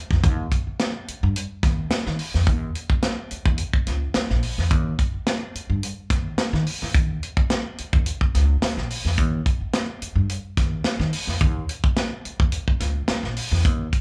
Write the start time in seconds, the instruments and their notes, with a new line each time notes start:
0.11 upright bass E2, kick, snare
0.24 upright bass D#2, kick, closed hi-hat
0.52 kick, closed hi-hat
0.67 muted upright bass stroke
0.79 snare, closed hi-hat
1.08 muted upright bass stroke, closed hi-hat
1.23 upright bass G2
1.36 closed hi-hat
1.63 upright bass D#2, kick, snare, closed hi-hat
1.91 snare, closed hi-hat
2.06 upright bass D#3, snare
2.19 open hi-hat
2.34 upright bass E2, snare
2.47 upright bass D#2, kick, closed hi-hat
2.75 closed hi-hat
2.90 kick
3.03 snare, closed hi-hat
3.31 muted upright bass stroke, closed hi-hat
3.46 upright bass D#2, kick
3.58 closed hi-hat
3.73 kick
3.87 upright bass C#2, snare, closed hi-hat
4.14 muted upright bass stroke, snare, closed hi-hat
4.30 upright bass A#1, snare
4.43 open hi-hat
4.58 upright bass E2, snare
4.71 upright bass D#2, kick, closed hi-hat
4.99 kick, closed hi-hat
5.14 muted upright bass stroke
5.26 snare, closed hi-hat
5.55 muted upright bass stroke, closed hi-hat
5.70 upright bass G2
5.83 closed hi-hat
6.10 upright bass D#2, kick, snare, closed hi-hat
6.38 snare, closed hi-hat
6.53 upright bass D#3, snare
6.67 open hi-hat
6.82 upright bass E2, snare
6.95 upright bass D#2, kick, closed hi-hat
7.23 closed hi-hat
7.37 muted upright bass stroke, kick
7.50 snare, closed hi-hat
7.78 muted upright bass stroke, closed hi-hat
7.93 upright bass D#2, kick
8.06 closed hi-hat
8.21 kick
8.35 upright bass C#2, snare, closed hi-hat
8.62 muted upright bass stroke, snare, closed hi-hat
8.77 upright bass A#1, snare
8.90 open hi-hat
9.05 upright bass E2, snare
9.18 upright bass D#2, kick, closed hi-hat
9.46 kick, closed hi-hat
9.61 muted upright bass stroke
9.73 snare, closed hi-hat
10.02 muted upright bass stroke, closed hi-hat
10.16 upright bass G2
10.29 closed hi-hat
10.57 upright bass D#2, kick, snare, closed hi-hat
10.84 snare, closed hi-hat
11.00 upright bass D#3, snare
11.13 open hi-hat
11.27 upright bass E2, snare
11.41 upright bass D#2, kick, closed hi-hat
11.69 closed hi-hat
11.84 muted upright bass stroke, kick
11.96 snare, closed hi-hat
12.25 muted upright bass stroke, closed hi-hat
12.40 upright bass D#2, kick
12.52 closed hi-hat
12.68 kick
12.80 upright bass C#2, snare, closed hi-hat
13.08 muted upright bass stroke, snare, closed hi-hat
13.23 upright bass A#1, snare
13.37 open hi-hat
13.52 upright bass E2, snare
13.65 upright bass D#2, kick, closed hi-hat
13.93 kick, closed hi-hat